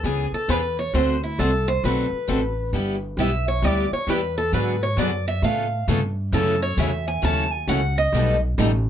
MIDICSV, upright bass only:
0, 0, Header, 1, 3, 480
1, 0, Start_track
1, 0, Tempo, 450113
1, 991, Time_signature, 4, 2, 24, 8
1, 9486, End_track
2, 0, Start_track
2, 0, Title_t, "Upright bass"
2, 0, Program_c, 0, 32
2, 37, Note_on_c, 0, 37, 80
2, 317, Note_off_c, 0, 37, 0
2, 515, Note_on_c, 0, 40, 80
2, 979, Note_off_c, 0, 40, 0
2, 997, Note_on_c, 0, 38, 86
2, 1460, Note_off_c, 0, 38, 0
2, 1478, Note_on_c, 0, 36, 89
2, 1940, Note_off_c, 0, 36, 0
2, 1958, Note_on_c, 0, 35, 87
2, 2238, Note_off_c, 0, 35, 0
2, 2430, Note_on_c, 0, 33, 75
2, 2896, Note_off_c, 0, 33, 0
2, 2909, Note_on_c, 0, 31, 84
2, 3376, Note_off_c, 0, 31, 0
2, 3380, Note_on_c, 0, 35, 89
2, 3851, Note_off_c, 0, 35, 0
2, 3863, Note_on_c, 0, 38, 80
2, 4149, Note_off_c, 0, 38, 0
2, 4340, Note_on_c, 0, 40, 84
2, 4811, Note_off_c, 0, 40, 0
2, 4826, Note_on_c, 0, 44, 91
2, 5291, Note_off_c, 0, 44, 0
2, 5298, Note_on_c, 0, 42, 93
2, 5770, Note_off_c, 0, 42, 0
2, 5783, Note_on_c, 0, 45, 90
2, 6252, Note_off_c, 0, 45, 0
2, 6267, Note_on_c, 0, 43, 91
2, 6734, Note_off_c, 0, 43, 0
2, 6743, Note_on_c, 0, 42, 93
2, 7212, Note_off_c, 0, 42, 0
2, 7221, Note_on_c, 0, 40, 94
2, 7692, Note_off_c, 0, 40, 0
2, 7707, Note_on_c, 0, 39, 83
2, 8175, Note_off_c, 0, 39, 0
2, 8185, Note_on_c, 0, 37, 83
2, 8654, Note_off_c, 0, 37, 0
2, 8665, Note_on_c, 0, 35, 92
2, 9134, Note_off_c, 0, 35, 0
2, 9150, Note_on_c, 0, 33, 102
2, 9486, Note_off_c, 0, 33, 0
2, 9486, End_track
3, 0, Start_track
3, 0, Title_t, "Muted upright bass strokes"
3, 340, Note_on_c, 9, 29, 42
3, 447, Note_off_c, 9, 29, 0
3, 2258, Note_on_c, 9, 29, 38
3, 2365, Note_off_c, 9, 29, 0
3, 4172, Note_on_c, 9, 29, 40
3, 4279, Note_off_c, 9, 29, 0
3, 9486, End_track
0, 0, End_of_file